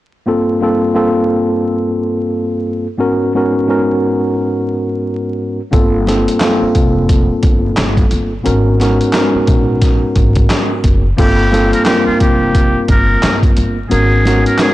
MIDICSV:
0, 0, Header, 1, 6, 480
1, 0, Start_track
1, 0, Tempo, 681818
1, 195, Time_signature, 4, 2, 24, 8
1, 10376, End_track
2, 0, Start_track
2, 0, Title_t, "Muted trumpet"
2, 0, Program_c, 0, 59
2, 7883, Note_on_c, 0, 67, 92
2, 8237, Note_off_c, 0, 67, 0
2, 8261, Note_on_c, 0, 70, 77
2, 8340, Note_off_c, 0, 70, 0
2, 8344, Note_on_c, 0, 67, 84
2, 8476, Note_off_c, 0, 67, 0
2, 8493, Note_on_c, 0, 65, 85
2, 8583, Note_off_c, 0, 65, 0
2, 8590, Note_on_c, 0, 67, 67
2, 9044, Note_off_c, 0, 67, 0
2, 9080, Note_on_c, 0, 70, 83
2, 9435, Note_off_c, 0, 70, 0
2, 9788, Note_on_c, 0, 68, 90
2, 10149, Note_off_c, 0, 68, 0
2, 10180, Note_on_c, 0, 70, 73
2, 10267, Note_off_c, 0, 70, 0
2, 10287, Note_on_c, 0, 68, 87
2, 10376, Note_off_c, 0, 68, 0
2, 10376, End_track
3, 0, Start_track
3, 0, Title_t, "Tine electric piano"
3, 0, Program_c, 1, 4
3, 182, Note_on_c, 1, 43, 84
3, 186, Note_on_c, 1, 58, 82
3, 190, Note_on_c, 1, 60, 79
3, 194, Note_on_c, 1, 65, 86
3, 199, Note_on_c, 1, 69, 100
3, 412, Note_off_c, 1, 43, 0
3, 414, Note_off_c, 1, 58, 0
3, 416, Note_off_c, 1, 60, 0
3, 419, Note_off_c, 1, 65, 0
3, 421, Note_off_c, 1, 69, 0
3, 427, Note_on_c, 1, 43, 90
3, 431, Note_on_c, 1, 58, 77
3, 436, Note_on_c, 1, 60, 81
3, 440, Note_on_c, 1, 65, 77
3, 445, Note_on_c, 1, 69, 103
3, 651, Note_off_c, 1, 43, 0
3, 655, Note_off_c, 1, 58, 0
3, 659, Note_off_c, 1, 60, 0
3, 660, Note_on_c, 1, 43, 87
3, 661, Note_off_c, 1, 65, 0
3, 663, Note_on_c, 1, 58, 84
3, 664, Note_off_c, 1, 69, 0
3, 667, Note_on_c, 1, 60, 76
3, 672, Note_on_c, 1, 65, 81
3, 677, Note_on_c, 1, 69, 96
3, 2012, Note_off_c, 1, 43, 0
3, 2013, Note_off_c, 1, 58, 0
3, 2016, Note_off_c, 1, 60, 0
3, 2018, Note_off_c, 1, 65, 0
3, 2020, Note_off_c, 1, 69, 0
3, 2096, Note_on_c, 1, 44, 86
3, 2101, Note_on_c, 1, 59, 81
3, 2104, Note_on_c, 1, 61, 88
3, 2110, Note_on_c, 1, 66, 82
3, 2114, Note_on_c, 1, 70, 94
3, 2329, Note_off_c, 1, 44, 0
3, 2332, Note_off_c, 1, 59, 0
3, 2334, Note_off_c, 1, 61, 0
3, 2336, Note_off_c, 1, 66, 0
3, 2339, Note_off_c, 1, 70, 0
3, 2352, Note_on_c, 1, 44, 92
3, 2357, Note_on_c, 1, 59, 83
3, 2361, Note_on_c, 1, 61, 92
3, 2366, Note_on_c, 1, 66, 77
3, 2371, Note_on_c, 1, 70, 93
3, 2577, Note_off_c, 1, 44, 0
3, 2580, Note_off_c, 1, 59, 0
3, 2582, Note_off_c, 1, 61, 0
3, 2584, Note_off_c, 1, 66, 0
3, 2587, Note_off_c, 1, 70, 0
3, 2590, Note_on_c, 1, 44, 99
3, 2594, Note_on_c, 1, 59, 82
3, 2598, Note_on_c, 1, 61, 85
3, 2603, Note_on_c, 1, 66, 77
3, 2607, Note_on_c, 1, 70, 98
3, 3937, Note_off_c, 1, 44, 0
3, 3939, Note_off_c, 1, 59, 0
3, 3941, Note_off_c, 1, 61, 0
3, 3944, Note_off_c, 1, 66, 0
3, 3946, Note_off_c, 1, 70, 0
3, 4020, Note_on_c, 1, 43, 85
3, 4024, Note_on_c, 1, 58, 82
3, 4029, Note_on_c, 1, 60, 81
3, 4032, Note_on_c, 1, 65, 88
3, 4038, Note_on_c, 1, 69, 106
3, 4251, Note_off_c, 1, 43, 0
3, 4253, Note_off_c, 1, 58, 0
3, 4256, Note_off_c, 1, 60, 0
3, 4258, Note_off_c, 1, 65, 0
3, 4260, Note_off_c, 1, 69, 0
3, 4267, Note_on_c, 1, 43, 91
3, 4271, Note_on_c, 1, 58, 80
3, 4276, Note_on_c, 1, 60, 85
3, 4281, Note_on_c, 1, 65, 78
3, 4285, Note_on_c, 1, 69, 104
3, 4488, Note_off_c, 1, 43, 0
3, 4492, Note_off_c, 1, 58, 0
3, 4497, Note_on_c, 1, 43, 86
3, 4498, Note_off_c, 1, 60, 0
3, 4501, Note_on_c, 1, 58, 81
3, 4502, Note_off_c, 1, 65, 0
3, 4504, Note_off_c, 1, 69, 0
3, 4506, Note_on_c, 1, 60, 77
3, 4510, Note_on_c, 1, 65, 80
3, 4514, Note_on_c, 1, 69, 100
3, 5850, Note_off_c, 1, 43, 0
3, 5852, Note_off_c, 1, 58, 0
3, 5855, Note_off_c, 1, 60, 0
3, 5857, Note_off_c, 1, 65, 0
3, 5859, Note_off_c, 1, 69, 0
3, 5936, Note_on_c, 1, 44, 90
3, 5940, Note_on_c, 1, 59, 81
3, 5944, Note_on_c, 1, 61, 90
3, 5949, Note_on_c, 1, 66, 81
3, 5953, Note_on_c, 1, 70, 97
3, 6170, Note_off_c, 1, 44, 0
3, 6172, Note_off_c, 1, 59, 0
3, 6174, Note_off_c, 1, 61, 0
3, 6176, Note_off_c, 1, 66, 0
3, 6178, Note_off_c, 1, 70, 0
3, 6193, Note_on_c, 1, 44, 93
3, 6197, Note_on_c, 1, 59, 84
3, 6202, Note_on_c, 1, 61, 89
3, 6206, Note_on_c, 1, 66, 80
3, 6211, Note_on_c, 1, 70, 97
3, 6418, Note_off_c, 1, 44, 0
3, 6420, Note_off_c, 1, 59, 0
3, 6422, Note_off_c, 1, 61, 0
3, 6424, Note_off_c, 1, 66, 0
3, 6427, Note_off_c, 1, 70, 0
3, 6430, Note_on_c, 1, 44, 101
3, 6434, Note_on_c, 1, 59, 81
3, 6439, Note_on_c, 1, 61, 89
3, 6443, Note_on_c, 1, 66, 78
3, 6448, Note_on_c, 1, 70, 101
3, 7777, Note_off_c, 1, 44, 0
3, 7779, Note_off_c, 1, 59, 0
3, 7781, Note_off_c, 1, 61, 0
3, 7784, Note_off_c, 1, 66, 0
3, 7786, Note_off_c, 1, 70, 0
3, 7861, Note_on_c, 1, 43, 87
3, 7867, Note_on_c, 1, 58, 86
3, 7870, Note_on_c, 1, 60, 80
3, 7875, Note_on_c, 1, 65, 88
3, 7879, Note_on_c, 1, 69, 101
3, 8092, Note_off_c, 1, 43, 0
3, 8095, Note_off_c, 1, 58, 0
3, 8096, Note_off_c, 1, 60, 0
3, 8099, Note_off_c, 1, 65, 0
3, 8101, Note_off_c, 1, 69, 0
3, 8105, Note_on_c, 1, 43, 90
3, 8111, Note_on_c, 1, 58, 81
3, 8114, Note_on_c, 1, 60, 84
3, 8119, Note_on_c, 1, 65, 79
3, 8124, Note_on_c, 1, 69, 108
3, 8330, Note_off_c, 1, 43, 0
3, 8337, Note_off_c, 1, 58, 0
3, 8338, Note_off_c, 1, 60, 0
3, 8338, Note_on_c, 1, 43, 86
3, 8341, Note_off_c, 1, 65, 0
3, 8343, Note_off_c, 1, 69, 0
3, 8344, Note_on_c, 1, 58, 84
3, 8347, Note_on_c, 1, 60, 76
3, 8352, Note_on_c, 1, 65, 82
3, 8357, Note_on_c, 1, 70, 98
3, 9691, Note_off_c, 1, 43, 0
3, 9694, Note_off_c, 1, 58, 0
3, 9696, Note_off_c, 1, 60, 0
3, 9698, Note_off_c, 1, 65, 0
3, 9700, Note_off_c, 1, 70, 0
3, 9779, Note_on_c, 1, 44, 88
3, 9784, Note_on_c, 1, 59, 81
3, 9787, Note_on_c, 1, 61, 90
3, 9792, Note_on_c, 1, 66, 85
3, 9797, Note_on_c, 1, 70, 100
3, 10011, Note_off_c, 1, 44, 0
3, 10013, Note_off_c, 1, 59, 0
3, 10015, Note_off_c, 1, 61, 0
3, 10017, Note_off_c, 1, 66, 0
3, 10020, Note_off_c, 1, 70, 0
3, 10033, Note_on_c, 1, 44, 97
3, 10038, Note_on_c, 1, 59, 85
3, 10042, Note_on_c, 1, 61, 94
3, 10047, Note_on_c, 1, 66, 81
3, 10051, Note_on_c, 1, 70, 91
3, 10258, Note_off_c, 1, 44, 0
3, 10260, Note_off_c, 1, 59, 0
3, 10263, Note_off_c, 1, 61, 0
3, 10265, Note_off_c, 1, 66, 0
3, 10267, Note_off_c, 1, 70, 0
3, 10272, Note_on_c, 1, 44, 100
3, 10276, Note_on_c, 1, 59, 83
3, 10280, Note_on_c, 1, 61, 84
3, 10284, Note_on_c, 1, 66, 78
3, 10289, Note_on_c, 1, 70, 102
3, 10376, Note_off_c, 1, 44, 0
3, 10376, Note_off_c, 1, 59, 0
3, 10376, Note_off_c, 1, 61, 0
3, 10376, Note_off_c, 1, 66, 0
3, 10376, Note_off_c, 1, 70, 0
3, 10376, End_track
4, 0, Start_track
4, 0, Title_t, "Upright bass"
4, 0, Program_c, 2, 32
4, 4035, Note_on_c, 2, 31, 98
4, 4401, Note_off_c, 2, 31, 0
4, 4758, Note_on_c, 2, 29, 81
4, 5123, Note_off_c, 2, 29, 0
4, 5235, Note_on_c, 2, 31, 93
4, 5418, Note_off_c, 2, 31, 0
4, 5478, Note_on_c, 2, 31, 97
4, 5660, Note_off_c, 2, 31, 0
4, 5720, Note_on_c, 2, 31, 79
4, 5901, Note_off_c, 2, 31, 0
4, 5958, Note_on_c, 2, 32, 99
4, 6323, Note_off_c, 2, 32, 0
4, 6678, Note_on_c, 2, 34, 86
4, 7043, Note_off_c, 2, 34, 0
4, 7156, Note_on_c, 2, 32, 98
4, 7338, Note_off_c, 2, 32, 0
4, 7635, Note_on_c, 2, 30, 88
4, 7818, Note_off_c, 2, 30, 0
4, 7877, Note_on_c, 2, 31, 100
4, 8242, Note_off_c, 2, 31, 0
4, 8598, Note_on_c, 2, 29, 80
4, 8963, Note_off_c, 2, 29, 0
4, 9076, Note_on_c, 2, 31, 94
4, 9258, Note_off_c, 2, 31, 0
4, 9318, Note_on_c, 2, 31, 97
4, 9500, Note_off_c, 2, 31, 0
4, 9559, Note_on_c, 2, 31, 83
4, 9740, Note_off_c, 2, 31, 0
4, 9800, Note_on_c, 2, 32, 100
4, 10164, Note_off_c, 2, 32, 0
4, 10376, End_track
5, 0, Start_track
5, 0, Title_t, "Muted upright bass strokes"
5, 4659, Note_on_c, 9, 29, 47
5, 4730, Note_off_c, 9, 29, 0
5, 6580, Note_on_c, 9, 29, 47
5, 6651, Note_off_c, 9, 29, 0
5, 8500, Note_on_c, 9, 29, 47
5, 8571, Note_off_c, 9, 29, 0
5, 10376, End_track
6, 0, Start_track
6, 0, Title_t, "Drums"
6, 4033, Note_on_c, 9, 36, 117
6, 4033, Note_on_c, 9, 42, 74
6, 4104, Note_off_c, 9, 36, 0
6, 4104, Note_off_c, 9, 42, 0
6, 4275, Note_on_c, 9, 38, 34
6, 4284, Note_on_c, 9, 42, 79
6, 4346, Note_off_c, 9, 38, 0
6, 4355, Note_off_c, 9, 42, 0
6, 4422, Note_on_c, 9, 42, 55
6, 4492, Note_off_c, 9, 42, 0
6, 4506, Note_on_c, 9, 39, 79
6, 4511, Note_on_c, 9, 38, 104
6, 4512, Note_on_c, 9, 42, 94
6, 4577, Note_off_c, 9, 39, 0
6, 4581, Note_off_c, 9, 38, 0
6, 4582, Note_off_c, 9, 42, 0
6, 4751, Note_on_c, 9, 42, 75
6, 4755, Note_on_c, 9, 36, 87
6, 4821, Note_off_c, 9, 42, 0
6, 4825, Note_off_c, 9, 36, 0
6, 4992, Note_on_c, 9, 42, 99
6, 4993, Note_on_c, 9, 36, 92
6, 5062, Note_off_c, 9, 42, 0
6, 5064, Note_off_c, 9, 36, 0
6, 5229, Note_on_c, 9, 42, 70
6, 5232, Note_on_c, 9, 36, 93
6, 5299, Note_off_c, 9, 42, 0
6, 5303, Note_off_c, 9, 36, 0
6, 5469, Note_on_c, 9, 39, 77
6, 5471, Note_on_c, 9, 42, 101
6, 5473, Note_on_c, 9, 38, 96
6, 5539, Note_off_c, 9, 39, 0
6, 5541, Note_off_c, 9, 42, 0
6, 5544, Note_off_c, 9, 38, 0
6, 5613, Note_on_c, 9, 36, 99
6, 5615, Note_on_c, 9, 42, 49
6, 5683, Note_off_c, 9, 36, 0
6, 5685, Note_off_c, 9, 42, 0
6, 5709, Note_on_c, 9, 42, 74
6, 5779, Note_off_c, 9, 42, 0
6, 5953, Note_on_c, 9, 42, 76
6, 6023, Note_off_c, 9, 42, 0
6, 6194, Note_on_c, 9, 38, 34
6, 6203, Note_on_c, 9, 42, 78
6, 6264, Note_off_c, 9, 38, 0
6, 6273, Note_off_c, 9, 42, 0
6, 6341, Note_on_c, 9, 42, 54
6, 6412, Note_off_c, 9, 42, 0
6, 6427, Note_on_c, 9, 39, 82
6, 6431, Note_on_c, 9, 38, 102
6, 6433, Note_on_c, 9, 42, 97
6, 6497, Note_off_c, 9, 39, 0
6, 6502, Note_off_c, 9, 38, 0
6, 6503, Note_off_c, 9, 42, 0
6, 6670, Note_on_c, 9, 42, 75
6, 6675, Note_on_c, 9, 36, 92
6, 6740, Note_off_c, 9, 42, 0
6, 6745, Note_off_c, 9, 36, 0
6, 6911, Note_on_c, 9, 42, 97
6, 6913, Note_on_c, 9, 36, 89
6, 6916, Note_on_c, 9, 38, 35
6, 6981, Note_off_c, 9, 42, 0
6, 6984, Note_off_c, 9, 36, 0
6, 6986, Note_off_c, 9, 38, 0
6, 7149, Note_on_c, 9, 42, 68
6, 7153, Note_on_c, 9, 36, 91
6, 7220, Note_off_c, 9, 42, 0
6, 7223, Note_off_c, 9, 36, 0
6, 7289, Note_on_c, 9, 42, 48
6, 7297, Note_on_c, 9, 36, 90
6, 7360, Note_off_c, 9, 42, 0
6, 7368, Note_off_c, 9, 36, 0
6, 7390, Note_on_c, 9, 39, 76
6, 7392, Note_on_c, 9, 42, 102
6, 7395, Note_on_c, 9, 38, 100
6, 7460, Note_off_c, 9, 39, 0
6, 7462, Note_off_c, 9, 42, 0
6, 7465, Note_off_c, 9, 38, 0
6, 7630, Note_on_c, 9, 42, 75
6, 7633, Note_on_c, 9, 36, 89
6, 7700, Note_off_c, 9, 42, 0
6, 7703, Note_off_c, 9, 36, 0
6, 7874, Note_on_c, 9, 36, 117
6, 7874, Note_on_c, 9, 42, 76
6, 7874, Note_on_c, 9, 49, 90
6, 7944, Note_off_c, 9, 42, 0
6, 7945, Note_off_c, 9, 36, 0
6, 7945, Note_off_c, 9, 49, 0
6, 8115, Note_on_c, 9, 38, 35
6, 8124, Note_on_c, 9, 42, 76
6, 8185, Note_off_c, 9, 38, 0
6, 8194, Note_off_c, 9, 42, 0
6, 8260, Note_on_c, 9, 42, 54
6, 8330, Note_off_c, 9, 42, 0
6, 8346, Note_on_c, 9, 39, 83
6, 8350, Note_on_c, 9, 38, 103
6, 8351, Note_on_c, 9, 42, 98
6, 8416, Note_off_c, 9, 39, 0
6, 8421, Note_off_c, 9, 38, 0
6, 8422, Note_off_c, 9, 42, 0
6, 8591, Note_on_c, 9, 42, 72
6, 8595, Note_on_c, 9, 36, 88
6, 8661, Note_off_c, 9, 42, 0
6, 8666, Note_off_c, 9, 36, 0
6, 8832, Note_on_c, 9, 42, 100
6, 8834, Note_on_c, 9, 36, 87
6, 8903, Note_off_c, 9, 42, 0
6, 8904, Note_off_c, 9, 36, 0
6, 9070, Note_on_c, 9, 42, 70
6, 9074, Note_on_c, 9, 36, 89
6, 9141, Note_off_c, 9, 42, 0
6, 9144, Note_off_c, 9, 36, 0
6, 9313, Note_on_c, 9, 39, 79
6, 9314, Note_on_c, 9, 42, 101
6, 9317, Note_on_c, 9, 38, 95
6, 9383, Note_off_c, 9, 39, 0
6, 9385, Note_off_c, 9, 42, 0
6, 9387, Note_off_c, 9, 38, 0
6, 9454, Note_on_c, 9, 36, 100
6, 9457, Note_on_c, 9, 42, 48
6, 9524, Note_off_c, 9, 36, 0
6, 9528, Note_off_c, 9, 42, 0
6, 9551, Note_on_c, 9, 42, 71
6, 9621, Note_off_c, 9, 42, 0
6, 9793, Note_on_c, 9, 42, 76
6, 9864, Note_off_c, 9, 42, 0
6, 10035, Note_on_c, 9, 38, 34
6, 10044, Note_on_c, 9, 42, 77
6, 10106, Note_off_c, 9, 38, 0
6, 10115, Note_off_c, 9, 42, 0
6, 10181, Note_on_c, 9, 42, 57
6, 10252, Note_off_c, 9, 42, 0
6, 10266, Note_on_c, 9, 39, 87
6, 10271, Note_on_c, 9, 38, 105
6, 10272, Note_on_c, 9, 42, 98
6, 10337, Note_off_c, 9, 39, 0
6, 10341, Note_off_c, 9, 38, 0
6, 10342, Note_off_c, 9, 42, 0
6, 10376, End_track
0, 0, End_of_file